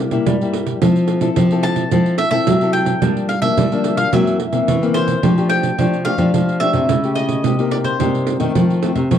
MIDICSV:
0, 0, Header, 1, 5, 480
1, 0, Start_track
1, 0, Key_signature, -1, "major"
1, 0, Tempo, 552486
1, 710, Time_signature, 4, 2, 24, 8
1, 7980, End_track
2, 0, Start_track
2, 0, Title_t, "Mandolin"
2, 0, Program_c, 0, 25
2, 1419, Note_on_c, 0, 81, 109
2, 1893, Note_off_c, 0, 81, 0
2, 1897, Note_on_c, 0, 76, 93
2, 1994, Note_off_c, 0, 76, 0
2, 2004, Note_on_c, 0, 76, 86
2, 2348, Note_off_c, 0, 76, 0
2, 2372, Note_on_c, 0, 79, 95
2, 2824, Note_off_c, 0, 79, 0
2, 2856, Note_on_c, 0, 77, 73
2, 2966, Note_off_c, 0, 77, 0
2, 2969, Note_on_c, 0, 76, 81
2, 3450, Note_off_c, 0, 76, 0
2, 3453, Note_on_c, 0, 77, 77
2, 3582, Note_off_c, 0, 77, 0
2, 3592, Note_on_c, 0, 76, 75
2, 4273, Note_off_c, 0, 76, 0
2, 4294, Note_on_c, 0, 72, 84
2, 4746, Note_off_c, 0, 72, 0
2, 4774, Note_on_c, 0, 79, 92
2, 5251, Note_off_c, 0, 79, 0
2, 5255, Note_on_c, 0, 77, 93
2, 5707, Note_off_c, 0, 77, 0
2, 5735, Note_on_c, 0, 76, 89
2, 6212, Note_off_c, 0, 76, 0
2, 6216, Note_on_c, 0, 75, 82
2, 6699, Note_off_c, 0, 75, 0
2, 6703, Note_on_c, 0, 74, 70
2, 6746, Note_off_c, 0, 74, 0
2, 6817, Note_on_c, 0, 72, 67
2, 7271, Note_off_c, 0, 72, 0
2, 7980, End_track
3, 0, Start_track
3, 0, Title_t, "Nylon-string guitar"
3, 0, Program_c, 1, 24
3, 0, Note_on_c, 1, 48, 59
3, 102, Note_on_c, 1, 55, 56
3, 107, Note_on_c, 1, 58, 66
3, 110, Note_on_c, 1, 64, 72
3, 212, Note_off_c, 1, 48, 0
3, 241, Note_on_c, 1, 43, 55
3, 308, Note_off_c, 1, 55, 0
3, 311, Note_off_c, 1, 58, 0
3, 311, Note_off_c, 1, 64, 0
3, 366, Note_on_c, 1, 55, 59
3, 370, Note_on_c, 1, 58, 69
3, 374, Note_on_c, 1, 64, 64
3, 679, Note_off_c, 1, 55, 0
3, 680, Note_off_c, 1, 58, 0
3, 683, Note_off_c, 1, 64, 0
3, 691, Note_off_c, 1, 43, 0
3, 715, Note_on_c, 1, 53, 50
3, 717, Note_on_c, 1, 60, 56
3, 723, Note_on_c, 1, 64, 53
3, 723, Note_on_c, 1, 69, 57
3, 1033, Note_off_c, 1, 60, 0
3, 1035, Note_off_c, 1, 64, 0
3, 1037, Note_off_c, 1, 69, 0
3, 1054, Note_on_c, 1, 60, 57
3, 1059, Note_on_c, 1, 69, 61
3, 1060, Note_on_c, 1, 64, 68
3, 1168, Note_off_c, 1, 53, 0
3, 1194, Note_on_c, 1, 48, 59
3, 1263, Note_off_c, 1, 60, 0
3, 1264, Note_off_c, 1, 64, 0
3, 1265, Note_off_c, 1, 69, 0
3, 1319, Note_on_c, 1, 60, 60
3, 1322, Note_on_c, 1, 64, 64
3, 1324, Note_on_c, 1, 69, 71
3, 1634, Note_off_c, 1, 60, 0
3, 1635, Note_off_c, 1, 64, 0
3, 1636, Note_off_c, 1, 69, 0
3, 1646, Note_off_c, 1, 48, 0
3, 1674, Note_on_c, 1, 53, 63
3, 1677, Note_on_c, 1, 60, 62
3, 1678, Note_on_c, 1, 64, 58
3, 1682, Note_on_c, 1, 69, 68
3, 1992, Note_off_c, 1, 60, 0
3, 1993, Note_off_c, 1, 64, 0
3, 1995, Note_off_c, 1, 69, 0
3, 2013, Note_on_c, 1, 60, 66
3, 2017, Note_on_c, 1, 64, 66
3, 2018, Note_on_c, 1, 69, 65
3, 2125, Note_off_c, 1, 53, 0
3, 2154, Note_on_c, 1, 48, 54
3, 2221, Note_off_c, 1, 60, 0
3, 2222, Note_off_c, 1, 64, 0
3, 2223, Note_off_c, 1, 69, 0
3, 2277, Note_on_c, 1, 60, 58
3, 2280, Note_on_c, 1, 64, 61
3, 2285, Note_on_c, 1, 69, 72
3, 2592, Note_off_c, 1, 60, 0
3, 2594, Note_off_c, 1, 64, 0
3, 2596, Note_off_c, 1, 69, 0
3, 2605, Note_off_c, 1, 48, 0
3, 2626, Note_on_c, 1, 53, 60
3, 2627, Note_on_c, 1, 43, 51
3, 2629, Note_on_c, 1, 58, 56
3, 2635, Note_on_c, 1, 62, 57
3, 2849, Note_off_c, 1, 53, 0
3, 2852, Note_off_c, 1, 58, 0
3, 2853, Note_off_c, 1, 62, 0
3, 2973, Note_on_c, 1, 53, 55
3, 2978, Note_on_c, 1, 58, 65
3, 2979, Note_on_c, 1, 62, 61
3, 3082, Note_off_c, 1, 43, 0
3, 3106, Note_on_c, 1, 50, 55
3, 3180, Note_off_c, 1, 53, 0
3, 3181, Note_off_c, 1, 58, 0
3, 3183, Note_off_c, 1, 62, 0
3, 3230, Note_on_c, 1, 53, 64
3, 3234, Note_on_c, 1, 58, 59
3, 3239, Note_on_c, 1, 62, 68
3, 3548, Note_off_c, 1, 53, 0
3, 3550, Note_off_c, 1, 58, 0
3, 3552, Note_off_c, 1, 62, 0
3, 3561, Note_off_c, 1, 50, 0
3, 3585, Note_on_c, 1, 42, 62
3, 3585, Note_on_c, 1, 52, 64
3, 3588, Note_on_c, 1, 58, 59
3, 3591, Note_on_c, 1, 60, 66
3, 3809, Note_off_c, 1, 52, 0
3, 3811, Note_off_c, 1, 58, 0
3, 3812, Note_off_c, 1, 60, 0
3, 3929, Note_on_c, 1, 52, 66
3, 3933, Note_on_c, 1, 58, 58
3, 3939, Note_on_c, 1, 60, 69
3, 4040, Note_off_c, 1, 42, 0
3, 4061, Note_on_c, 1, 49, 55
3, 4138, Note_off_c, 1, 52, 0
3, 4140, Note_off_c, 1, 58, 0
3, 4142, Note_off_c, 1, 60, 0
3, 4186, Note_on_c, 1, 52, 62
3, 4191, Note_on_c, 1, 58, 66
3, 4193, Note_on_c, 1, 60, 70
3, 4507, Note_off_c, 1, 52, 0
3, 4508, Note_off_c, 1, 58, 0
3, 4510, Note_off_c, 1, 60, 0
3, 4519, Note_off_c, 1, 49, 0
3, 4545, Note_on_c, 1, 57, 52
3, 4546, Note_on_c, 1, 53, 50
3, 4549, Note_on_c, 1, 62, 49
3, 4552, Note_on_c, 1, 67, 58
3, 4626, Note_off_c, 1, 57, 0
3, 4628, Note_off_c, 1, 62, 0
3, 4630, Note_off_c, 1, 67, 0
3, 4669, Note_on_c, 1, 57, 59
3, 4674, Note_on_c, 1, 62, 50
3, 4675, Note_on_c, 1, 67, 62
3, 4989, Note_off_c, 1, 57, 0
3, 4991, Note_off_c, 1, 62, 0
3, 4992, Note_off_c, 1, 67, 0
3, 5002, Note_off_c, 1, 53, 0
3, 5025, Note_on_c, 1, 48, 48
3, 5029, Note_on_c, 1, 57, 50
3, 5030, Note_on_c, 1, 62, 51
3, 5034, Note_on_c, 1, 67, 53
3, 5168, Note_off_c, 1, 57, 0
3, 5169, Note_off_c, 1, 62, 0
3, 5171, Note_off_c, 1, 67, 0
3, 5259, Note_on_c, 1, 57, 51
3, 5263, Note_on_c, 1, 62, 50
3, 5268, Note_on_c, 1, 67, 56
3, 5334, Note_off_c, 1, 57, 0
3, 5336, Note_off_c, 1, 62, 0
3, 5338, Note_off_c, 1, 67, 0
3, 5371, Note_on_c, 1, 57, 61
3, 5376, Note_on_c, 1, 67, 59
3, 5377, Note_on_c, 1, 62, 56
3, 5482, Note_off_c, 1, 48, 0
3, 5509, Note_on_c, 1, 53, 55
3, 5701, Note_off_c, 1, 57, 0
3, 5703, Note_off_c, 1, 62, 0
3, 5704, Note_off_c, 1, 67, 0
3, 5741, Note_on_c, 1, 57, 49
3, 5745, Note_on_c, 1, 62, 56
3, 5751, Note_on_c, 1, 67, 53
3, 5965, Note_off_c, 1, 53, 0
3, 5970, Note_off_c, 1, 57, 0
3, 5972, Note_off_c, 1, 62, 0
3, 5974, Note_off_c, 1, 67, 0
3, 6119, Note_on_c, 1, 57, 54
3, 6125, Note_on_c, 1, 67, 61
3, 6436, Note_off_c, 1, 57, 0
3, 6439, Note_off_c, 1, 67, 0
3, 6471, Note_on_c, 1, 48, 53
3, 6473, Note_on_c, 1, 58, 49
3, 6475, Note_on_c, 1, 63, 45
3, 6482, Note_on_c, 1, 67, 56
3, 6552, Note_off_c, 1, 58, 0
3, 6554, Note_off_c, 1, 63, 0
3, 6556, Note_off_c, 1, 67, 0
3, 6594, Note_on_c, 1, 58, 62
3, 6598, Note_on_c, 1, 63, 56
3, 6602, Note_on_c, 1, 67, 60
3, 6914, Note_off_c, 1, 58, 0
3, 6917, Note_off_c, 1, 63, 0
3, 6918, Note_off_c, 1, 67, 0
3, 6928, Note_off_c, 1, 48, 0
3, 6952, Note_on_c, 1, 43, 51
3, 6958, Note_on_c, 1, 58, 56
3, 6959, Note_on_c, 1, 63, 53
3, 6963, Note_on_c, 1, 67, 58
3, 7276, Note_off_c, 1, 58, 0
3, 7278, Note_off_c, 1, 63, 0
3, 7279, Note_off_c, 1, 67, 0
3, 7295, Note_on_c, 1, 51, 65
3, 7301, Note_on_c, 1, 57, 60
3, 7302, Note_on_c, 1, 60, 64
3, 7410, Note_off_c, 1, 43, 0
3, 7432, Note_on_c, 1, 41, 58
3, 7627, Note_off_c, 1, 51, 0
3, 7628, Note_off_c, 1, 57, 0
3, 7630, Note_off_c, 1, 60, 0
3, 7668, Note_on_c, 1, 51, 53
3, 7673, Note_on_c, 1, 57, 53
3, 7676, Note_on_c, 1, 60, 65
3, 7813, Note_off_c, 1, 51, 0
3, 7815, Note_off_c, 1, 57, 0
3, 7816, Note_off_c, 1, 60, 0
3, 7890, Note_off_c, 1, 41, 0
3, 7915, Note_on_c, 1, 48, 54
3, 7919, Note_on_c, 1, 51, 54
3, 7922, Note_on_c, 1, 60, 57
3, 7924, Note_on_c, 1, 57, 58
3, 7980, Note_off_c, 1, 48, 0
3, 7980, Note_off_c, 1, 51, 0
3, 7980, Note_off_c, 1, 57, 0
3, 7980, Note_off_c, 1, 60, 0
3, 7980, End_track
4, 0, Start_track
4, 0, Title_t, "Nylon-string guitar"
4, 0, Program_c, 2, 24
4, 230, Note_on_c, 2, 55, 81
4, 637, Note_off_c, 2, 55, 0
4, 711, Note_on_c, 2, 53, 96
4, 1117, Note_off_c, 2, 53, 0
4, 1188, Note_on_c, 2, 53, 93
4, 1595, Note_off_c, 2, 53, 0
4, 1668, Note_on_c, 2, 53, 88
4, 1871, Note_off_c, 2, 53, 0
4, 2146, Note_on_c, 2, 54, 83
4, 2553, Note_off_c, 2, 54, 0
4, 2622, Note_on_c, 2, 55, 94
4, 3030, Note_off_c, 2, 55, 0
4, 3104, Note_on_c, 2, 55, 93
4, 3512, Note_off_c, 2, 55, 0
4, 3585, Note_on_c, 2, 54, 94
4, 3789, Note_off_c, 2, 54, 0
4, 4067, Note_on_c, 2, 52, 78
4, 4474, Note_off_c, 2, 52, 0
4, 4545, Note_on_c, 2, 53, 92
4, 4953, Note_off_c, 2, 53, 0
4, 5025, Note_on_c, 2, 53, 90
4, 5331, Note_off_c, 2, 53, 0
4, 5369, Note_on_c, 2, 53, 84
4, 5478, Note_off_c, 2, 53, 0
4, 5507, Note_on_c, 2, 53, 83
4, 5814, Note_off_c, 2, 53, 0
4, 5854, Note_on_c, 2, 48, 81
4, 5962, Note_off_c, 2, 48, 0
4, 5988, Note_on_c, 2, 49, 78
4, 6469, Note_off_c, 2, 49, 0
4, 6469, Note_on_c, 2, 48, 87
4, 6878, Note_off_c, 2, 48, 0
4, 6951, Note_on_c, 2, 48, 89
4, 7258, Note_off_c, 2, 48, 0
4, 7298, Note_on_c, 2, 51, 78
4, 7407, Note_off_c, 2, 51, 0
4, 7431, Note_on_c, 2, 53, 83
4, 7739, Note_off_c, 2, 53, 0
4, 7779, Note_on_c, 2, 48, 83
4, 7888, Note_off_c, 2, 48, 0
4, 7914, Note_on_c, 2, 53, 81
4, 7980, Note_off_c, 2, 53, 0
4, 7980, End_track
5, 0, Start_track
5, 0, Title_t, "Pandeiro"
5, 97, Note_on_c, 9, 54, 57
5, 183, Note_off_c, 9, 54, 0
5, 229, Note_on_c, 9, 54, 89
5, 316, Note_off_c, 9, 54, 0
5, 360, Note_on_c, 9, 54, 32
5, 446, Note_off_c, 9, 54, 0
5, 464, Note_on_c, 9, 54, 60
5, 551, Note_off_c, 9, 54, 0
5, 577, Note_on_c, 9, 54, 55
5, 664, Note_off_c, 9, 54, 0
5, 709, Note_on_c, 9, 54, 89
5, 796, Note_off_c, 9, 54, 0
5, 832, Note_on_c, 9, 54, 34
5, 919, Note_off_c, 9, 54, 0
5, 934, Note_on_c, 9, 54, 64
5, 1021, Note_off_c, 9, 54, 0
5, 1050, Note_on_c, 9, 54, 60
5, 1137, Note_off_c, 9, 54, 0
5, 1183, Note_on_c, 9, 54, 81
5, 1269, Note_off_c, 9, 54, 0
5, 1309, Note_on_c, 9, 54, 36
5, 1396, Note_off_c, 9, 54, 0
5, 1416, Note_on_c, 9, 54, 63
5, 1503, Note_off_c, 9, 54, 0
5, 1529, Note_on_c, 9, 54, 58
5, 1616, Note_off_c, 9, 54, 0
5, 1663, Note_on_c, 9, 54, 79
5, 1750, Note_off_c, 9, 54, 0
5, 1789, Note_on_c, 9, 54, 34
5, 1875, Note_off_c, 9, 54, 0
5, 1893, Note_on_c, 9, 54, 67
5, 1979, Note_off_c, 9, 54, 0
5, 2009, Note_on_c, 9, 54, 58
5, 2096, Note_off_c, 9, 54, 0
5, 2144, Note_on_c, 9, 54, 88
5, 2231, Note_off_c, 9, 54, 0
5, 2268, Note_on_c, 9, 54, 35
5, 2355, Note_off_c, 9, 54, 0
5, 2375, Note_on_c, 9, 54, 58
5, 2462, Note_off_c, 9, 54, 0
5, 2487, Note_on_c, 9, 54, 61
5, 2574, Note_off_c, 9, 54, 0
5, 2622, Note_on_c, 9, 54, 85
5, 2708, Note_off_c, 9, 54, 0
5, 2751, Note_on_c, 9, 54, 36
5, 2838, Note_off_c, 9, 54, 0
5, 2857, Note_on_c, 9, 54, 62
5, 2944, Note_off_c, 9, 54, 0
5, 2971, Note_on_c, 9, 54, 60
5, 3058, Note_off_c, 9, 54, 0
5, 3107, Note_on_c, 9, 54, 84
5, 3194, Note_off_c, 9, 54, 0
5, 3232, Note_on_c, 9, 54, 34
5, 3319, Note_off_c, 9, 54, 0
5, 3338, Note_on_c, 9, 54, 69
5, 3425, Note_off_c, 9, 54, 0
5, 3451, Note_on_c, 9, 54, 55
5, 3538, Note_off_c, 9, 54, 0
5, 3586, Note_on_c, 9, 54, 83
5, 3673, Note_off_c, 9, 54, 0
5, 3711, Note_on_c, 9, 54, 35
5, 3798, Note_off_c, 9, 54, 0
5, 3819, Note_on_c, 9, 54, 65
5, 3906, Note_off_c, 9, 54, 0
5, 3932, Note_on_c, 9, 54, 58
5, 4019, Note_off_c, 9, 54, 0
5, 4067, Note_on_c, 9, 54, 80
5, 4154, Note_off_c, 9, 54, 0
5, 4196, Note_on_c, 9, 54, 34
5, 4283, Note_off_c, 9, 54, 0
5, 4298, Note_on_c, 9, 54, 65
5, 4385, Note_off_c, 9, 54, 0
5, 4411, Note_on_c, 9, 54, 63
5, 4498, Note_off_c, 9, 54, 0
5, 4546, Note_on_c, 9, 54, 84
5, 4633, Note_off_c, 9, 54, 0
5, 4672, Note_on_c, 9, 54, 31
5, 4759, Note_off_c, 9, 54, 0
5, 4779, Note_on_c, 9, 54, 63
5, 4866, Note_off_c, 9, 54, 0
5, 4893, Note_on_c, 9, 54, 54
5, 4980, Note_off_c, 9, 54, 0
5, 5027, Note_on_c, 9, 54, 72
5, 5114, Note_off_c, 9, 54, 0
5, 5155, Note_on_c, 9, 54, 31
5, 5242, Note_off_c, 9, 54, 0
5, 5261, Note_on_c, 9, 54, 63
5, 5348, Note_off_c, 9, 54, 0
5, 5374, Note_on_c, 9, 54, 53
5, 5460, Note_off_c, 9, 54, 0
5, 5508, Note_on_c, 9, 54, 70
5, 5595, Note_off_c, 9, 54, 0
5, 5637, Note_on_c, 9, 54, 31
5, 5724, Note_off_c, 9, 54, 0
5, 5739, Note_on_c, 9, 54, 64
5, 5825, Note_off_c, 9, 54, 0
5, 5850, Note_on_c, 9, 54, 55
5, 5937, Note_off_c, 9, 54, 0
5, 5985, Note_on_c, 9, 54, 82
5, 6072, Note_off_c, 9, 54, 0
5, 6113, Note_on_c, 9, 54, 31
5, 6200, Note_off_c, 9, 54, 0
5, 6218, Note_on_c, 9, 54, 55
5, 6304, Note_off_c, 9, 54, 0
5, 6330, Note_on_c, 9, 54, 57
5, 6417, Note_off_c, 9, 54, 0
5, 6464, Note_on_c, 9, 54, 77
5, 6551, Note_off_c, 9, 54, 0
5, 6593, Note_on_c, 9, 54, 31
5, 6680, Note_off_c, 9, 54, 0
5, 6701, Note_on_c, 9, 54, 63
5, 6788, Note_off_c, 9, 54, 0
5, 6814, Note_on_c, 9, 54, 54
5, 6901, Note_off_c, 9, 54, 0
5, 6949, Note_on_c, 9, 54, 79
5, 7036, Note_off_c, 9, 54, 0
5, 7078, Note_on_c, 9, 54, 33
5, 7165, Note_off_c, 9, 54, 0
5, 7183, Note_on_c, 9, 54, 66
5, 7270, Note_off_c, 9, 54, 0
5, 7296, Note_on_c, 9, 54, 49
5, 7383, Note_off_c, 9, 54, 0
5, 7432, Note_on_c, 9, 54, 74
5, 7519, Note_off_c, 9, 54, 0
5, 7562, Note_on_c, 9, 54, 30
5, 7649, Note_off_c, 9, 54, 0
5, 7668, Note_on_c, 9, 54, 64
5, 7755, Note_off_c, 9, 54, 0
5, 7781, Note_on_c, 9, 54, 51
5, 7868, Note_off_c, 9, 54, 0
5, 7917, Note_on_c, 9, 54, 78
5, 7980, Note_off_c, 9, 54, 0
5, 7980, End_track
0, 0, End_of_file